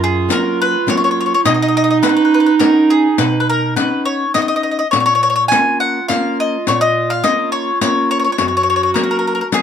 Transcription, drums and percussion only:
0.30 riq medium
0.88 riq medium
1.46 riq medium
2.03 riq medium
2.60 riq medium
3.18 riq medium
3.77 riq medium
4.35 riq medium
4.93 riq medium
5.52 riq medium
6.10 riq medium
6.67 riq medium
7.24 riq medium
7.81 riq medium
8.38 riq medium
8.96 riq medium
9.52 riq medium

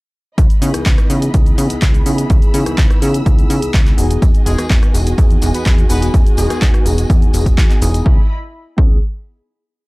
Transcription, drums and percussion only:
0.38 kick loud
0.38 closed hi-hat medium
0.38 shaker soft
0.50 closed hi-hat soft
0.50 shaker soft
0.62 open hi-hat loud
0.62 shaker medium
0.74 cross-stick medium
0.74 closed hi-hat medium
0.74 shaker soft
0.86 kick loud
0.86 clap loud
0.86 closed hi-hat medium
0.86 shaker soft
0.98 cross-stick medium
0.98 closed hi-hat soft
0.98 shaker soft
1.10 open hi-hat medium
1.10 shaker medium
1.22 closed hi-hat medium
1.22 shaker soft
1.34 kick loud
1.34 closed hi-hat medium
1.34 shaker soft
1.46 closed hi-hat soft
1.46 shaker soft
1.58 open hi-hat loud
1.58 shaker medium
1.70 closed hi-hat medium
1.70 shaker soft
1.82 kick loud
1.82 clap loud
1.82 closed hi-hat medium
1.82 shaker soft
1.94 closed hi-hat soft
1.94 shaker soft
2.06 open hi-hat medium
2.06 shaker medium
2.18 closed hi-hat medium
2.18 shaker soft
2.30 kick loud
2.30 closed hi-hat medium
2.30 shaker soft
2.42 closed hi-hat soft
2.42 shaker soft
2.54 open hi-hat loud
2.54 shaker medium
2.66 cross-stick medium
2.66 closed hi-hat medium
2.66 shaker soft
2.78 kick loud
2.78 clap loud
2.78 closed hi-hat medium
2.78 shaker soft
2.90 cross-stick medium
2.90 closed hi-hat soft
2.90 shaker soft
3.02 open hi-hat medium
3.02 shaker medium
3.14 closed hi-hat medium
3.14 shaker soft
3.26 kick loud
3.26 closed hi-hat medium
3.26 shaker soft
3.39 closed hi-hat soft
3.39 shaker soft
3.50 open hi-hat loud
3.50 shaker medium
3.62 closed hi-hat medium
3.62 shaker soft
3.74 kick loud
3.74 clap loud
3.74 closed hi-hat medium
3.74 shaker soft
3.86 clap soft
3.86 closed hi-hat soft
3.86 shaker soft
3.98 open hi-hat medium
3.98 shaker medium
4.11 closed hi-hat medium
4.11 shaker soft
4.22 kick loud
4.22 closed hi-hat medium
4.22 tambourine soft
4.22 shaker soft
4.35 closed hi-hat soft
4.35 shaker soft
4.46 open hi-hat loud
4.46 tambourine loud
4.46 shaker medium
4.58 cross-stick medium
4.58 closed hi-hat medium
4.58 tambourine medium
4.58 shaker soft
4.70 kick loud
4.70 clap loud
4.70 closed hi-hat medium
4.70 shaker soft
4.83 cross-stick medium
4.83 closed hi-hat soft
4.83 shaker soft
4.94 open hi-hat medium
4.94 tambourine loud
4.94 shaker medium
5.06 closed hi-hat soft
5.06 tambourine medium
5.06 shaker soft
5.18 kick loud
5.18 closed hi-hat medium
5.18 tambourine soft
5.18 shaker soft
5.30 closed hi-hat soft
5.30 shaker soft
5.42 open hi-hat loud
5.42 tambourine medium
5.42 shaker medium
5.54 closed hi-hat medium
5.54 tambourine medium
5.54 shaker soft
5.65 kick loud
5.65 clap loud
5.65 closed hi-hat medium
5.65 tambourine soft
5.65 shaker soft
5.78 closed hi-hat soft
5.78 shaker soft
5.89 open hi-hat loud
5.89 tambourine loud
5.89 shaker medium
6.02 closed hi-hat medium
6.02 tambourine medium
6.02 shaker soft
6.14 kick loud
6.14 closed hi-hat medium
6.14 shaker soft
6.27 closed hi-hat soft
6.27 shaker soft
6.37 open hi-hat loud
6.37 tambourine loud
6.37 shaker medium
6.50 cross-stick medium
6.50 closed hi-hat soft
6.50 tambourine medium
6.50 shaker soft
6.62 kick loud
6.62 clap loud
6.62 closed hi-hat medium
6.62 shaker soft
6.74 cross-stick medium
6.74 closed hi-hat soft
6.74 shaker soft
6.86 open hi-hat medium
6.86 tambourine loud
6.86 shaker medium
6.98 closed hi-hat medium
6.98 tambourine medium
6.98 shaker soft
7.10 kick loud
7.10 closed hi-hat medium
7.10 shaker soft
7.22 closed hi-hat soft
7.22 shaker soft
7.33 open hi-hat loud
7.33 tambourine loud
7.33 shaker medium
7.46 kick medium
7.46 closed hi-hat medium
7.46 tambourine medium
7.46 shaker soft
7.58 kick loud
7.58 clap loud
7.58 closed hi-hat medium
7.58 shaker soft
7.70 clap soft
7.70 closed hi-hat soft
7.70 shaker soft
7.81 open hi-hat loud
7.81 tambourine loud
7.81 shaker medium
7.94 closed hi-hat soft
7.94 tambourine medium
7.94 shaker soft
8.06 kick loud
8.78 kick loud

